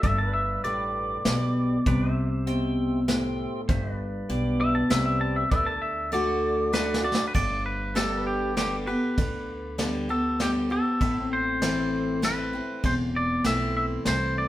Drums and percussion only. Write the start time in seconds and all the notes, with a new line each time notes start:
0.03 kick, closed hi-hat
0.64 closed hi-hat
1.25 snare, closed hi-hat
1.86 kick, closed hi-hat
2.47 closed hi-hat
3.08 snare, closed hi-hat
3.69 kick, closed hi-hat
4.30 closed hi-hat
4.90 snare
5.51 kick, closed hi-hat
6.13 closed hi-hat
6.74 snare
6.94 snare
7.15 snare
7.35 kick, ride
7.96 snare, ride
8.57 snare, ride
9.18 kick, ride
9.79 snare, ride
10.40 snare, ride
11.01 kick, ride
11.62 snare, ride
12.23 snare, ride
12.84 kick, ride
13.44 snare, ride
14.05 snare, ride